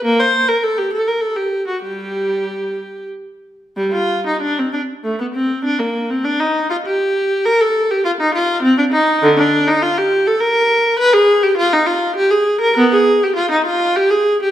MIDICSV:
0, 0, Header, 1, 2, 480
1, 0, Start_track
1, 0, Tempo, 596421
1, 37, Time_signature, 3, 2, 24, 8
1, 1477, Tempo, 628272
1, 2437, Tempo, 660793
1, 3397, Tempo, 614125
1, 4837, Tempo, 590551
1, 9637, Tempo, 600000
1, 11518, End_track
2, 0, Start_track
2, 0, Title_t, "Viola"
2, 0, Program_c, 0, 41
2, 36, Note_on_c, 0, 58, 104
2, 152, Note_off_c, 0, 58, 0
2, 163, Note_on_c, 0, 72, 89
2, 393, Note_on_c, 0, 70, 79
2, 395, Note_off_c, 0, 72, 0
2, 510, Note_off_c, 0, 70, 0
2, 510, Note_on_c, 0, 69, 85
2, 627, Note_off_c, 0, 69, 0
2, 629, Note_on_c, 0, 67, 78
2, 745, Note_off_c, 0, 67, 0
2, 751, Note_on_c, 0, 69, 87
2, 864, Note_off_c, 0, 69, 0
2, 868, Note_on_c, 0, 70, 78
2, 972, Note_on_c, 0, 69, 76
2, 985, Note_off_c, 0, 70, 0
2, 1098, Note_off_c, 0, 69, 0
2, 1098, Note_on_c, 0, 67, 71
2, 1347, Note_off_c, 0, 67, 0
2, 1349, Note_on_c, 0, 66, 59
2, 1468, Note_on_c, 0, 55, 59
2, 1469, Note_on_c, 0, 67, 72
2, 1474, Note_off_c, 0, 66, 0
2, 2164, Note_off_c, 0, 55, 0
2, 2414, Note_off_c, 0, 67, 0
2, 2925, Note_on_c, 0, 55, 83
2, 3042, Note_on_c, 0, 65, 81
2, 3045, Note_off_c, 0, 55, 0
2, 3275, Note_off_c, 0, 65, 0
2, 3291, Note_on_c, 0, 63, 71
2, 3399, Note_off_c, 0, 63, 0
2, 3401, Note_on_c, 0, 62, 82
2, 3518, Note_off_c, 0, 62, 0
2, 3535, Note_on_c, 0, 60, 72
2, 3647, Note_on_c, 0, 62, 73
2, 3648, Note_off_c, 0, 60, 0
2, 3709, Note_off_c, 0, 62, 0
2, 3887, Note_on_c, 0, 57, 73
2, 4001, Note_off_c, 0, 57, 0
2, 4013, Note_on_c, 0, 59, 67
2, 4059, Note_off_c, 0, 59, 0
2, 4125, Note_on_c, 0, 60, 73
2, 4359, Note_on_c, 0, 62, 85
2, 4361, Note_off_c, 0, 60, 0
2, 4477, Note_on_c, 0, 58, 76
2, 4479, Note_off_c, 0, 62, 0
2, 4717, Note_off_c, 0, 58, 0
2, 4720, Note_on_c, 0, 60, 76
2, 4829, Note_on_c, 0, 62, 90
2, 4837, Note_off_c, 0, 60, 0
2, 4953, Note_on_c, 0, 63, 80
2, 4954, Note_off_c, 0, 62, 0
2, 5195, Note_off_c, 0, 63, 0
2, 5199, Note_on_c, 0, 65, 83
2, 5248, Note_off_c, 0, 65, 0
2, 5326, Note_on_c, 0, 67, 94
2, 5803, Note_off_c, 0, 67, 0
2, 5811, Note_on_c, 0, 70, 105
2, 5932, Note_off_c, 0, 70, 0
2, 5935, Note_on_c, 0, 69, 93
2, 6174, Note_off_c, 0, 69, 0
2, 6178, Note_on_c, 0, 67, 83
2, 6294, Note_on_c, 0, 65, 98
2, 6296, Note_off_c, 0, 67, 0
2, 6342, Note_off_c, 0, 65, 0
2, 6423, Note_on_c, 0, 63, 88
2, 6535, Note_off_c, 0, 63, 0
2, 6535, Note_on_c, 0, 65, 91
2, 6764, Note_on_c, 0, 60, 93
2, 6767, Note_off_c, 0, 65, 0
2, 6883, Note_off_c, 0, 60, 0
2, 6892, Note_on_c, 0, 62, 85
2, 6939, Note_off_c, 0, 62, 0
2, 7005, Note_on_c, 0, 63, 90
2, 7243, Note_off_c, 0, 63, 0
2, 7251, Note_on_c, 0, 50, 106
2, 7369, Note_off_c, 0, 50, 0
2, 7372, Note_on_c, 0, 62, 96
2, 7606, Note_off_c, 0, 62, 0
2, 7618, Note_on_c, 0, 63, 93
2, 7733, Note_off_c, 0, 63, 0
2, 7736, Note_on_c, 0, 65, 102
2, 7851, Note_off_c, 0, 65, 0
2, 7863, Note_on_c, 0, 67, 98
2, 8094, Note_off_c, 0, 67, 0
2, 8101, Note_on_c, 0, 69, 91
2, 8210, Note_on_c, 0, 70, 102
2, 8213, Note_off_c, 0, 69, 0
2, 8684, Note_off_c, 0, 70, 0
2, 8687, Note_on_c, 0, 71, 108
2, 8801, Note_off_c, 0, 71, 0
2, 8801, Note_on_c, 0, 68, 102
2, 9039, Note_off_c, 0, 68, 0
2, 9043, Note_on_c, 0, 67, 86
2, 9157, Note_on_c, 0, 65, 105
2, 9160, Note_off_c, 0, 67, 0
2, 9274, Note_off_c, 0, 65, 0
2, 9285, Note_on_c, 0, 63, 94
2, 9396, Note_on_c, 0, 65, 90
2, 9400, Note_off_c, 0, 63, 0
2, 9634, Note_on_c, 0, 67, 102
2, 9635, Note_off_c, 0, 65, 0
2, 9751, Note_off_c, 0, 67, 0
2, 9753, Note_on_c, 0, 68, 92
2, 9995, Note_on_c, 0, 70, 98
2, 9997, Note_off_c, 0, 68, 0
2, 10119, Note_off_c, 0, 70, 0
2, 10120, Note_on_c, 0, 59, 105
2, 10237, Note_on_c, 0, 68, 98
2, 10243, Note_off_c, 0, 59, 0
2, 10480, Note_off_c, 0, 68, 0
2, 10494, Note_on_c, 0, 67, 81
2, 10595, Note_on_c, 0, 65, 93
2, 10607, Note_off_c, 0, 67, 0
2, 10714, Note_off_c, 0, 65, 0
2, 10719, Note_on_c, 0, 63, 81
2, 10835, Note_off_c, 0, 63, 0
2, 10835, Note_on_c, 0, 65, 90
2, 11070, Note_off_c, 0, 65, 0
2, 11080, Note_on_c, 0, 67, 100
2, 11196, Note_on_c, 0, 68, 93
2, 11198, Note_off_c, 0, 67, 0
2, 11436, Note_off_c, 0, 68, 0
2, 11449, Note_on_c, 0, 67, 79
2, 11518, Note_off_c, 0, 67, 0
2, 11518, End_track
0, 0, End_of_file